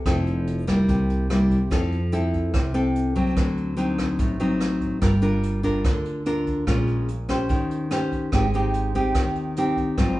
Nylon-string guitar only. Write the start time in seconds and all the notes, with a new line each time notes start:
0.06 F3 C4 E4 A4
0.67 G3 A#3 E4
0.89 C3
1.30 G3 A#3 E4
1.71 F3 C4 E4 A4
2.12 C4 E4 A4
2.54 C3
2.74 C4 E4 A4
3.16 F#3 C4
3.36 D3
3.77 F#3 C4 D#4
4.19 A2
4.40 F#3 C4 D#4
5.01 G3 D4 F4 A#4
5.22 D4 F4 A#4
5.63 D4 F4 A#4
5.85 D3
6.26 D4 F4 A#4
6.67 A#2 G#3 C#4 F4
7.29 C#4 G4 C5
7.49 D#3
7.91 C#4 G4 C5
8.33 G#3 C4 D#4 G4
8.54 C4 D#4 G4
8.95 C4 D#4 G4
9.16 D#3
9.57 C4 D#4 G4
9.98 G#2 F#3 C4 F4